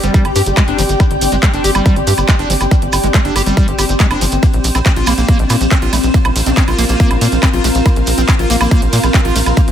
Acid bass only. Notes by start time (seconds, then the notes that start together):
0.04 G3
0.14 G3
0.36 G4
0.57 G#3
0.68 D4
0.78 F3
1.00 G3
1.32 G#3
1.43 G#3
1.53 D4
1.64 G4
1.75 G3
1.86 G3
2.07 G4
2.29 G#3
2.39 D4
2.50 F3
2.71 G3
3.04 G#3
3.14 G#3
3.25 D4
3.36 G4
3.46 G3
3.57 G3
3.79 G4
4.00 G#3
4.11 D4
4.21 F3
4.43 A#3
4.75 C4
4.86 C4
4.96 F4
5.07 A#3
5.18 A#3
5.28 A#3
5.50 A#3
5.71 C4
5.82 F4
5.93 A3
6.14 A#3
6.46 C4
6.57 C4
6.68 F4
6.78 A#3
6.89 A#3
7.00 A#3
7.21 A#3
7.43 C4
7.53 F4
7.64 A3
7.86 A#3
8.18 C4
8.29 C4
8.39 F4
8.50 A#3
8.61 A#3
8.71 A#3
8.93 A#3
9.14 C4
9.25 F4
9.36 A3
9.57 A#3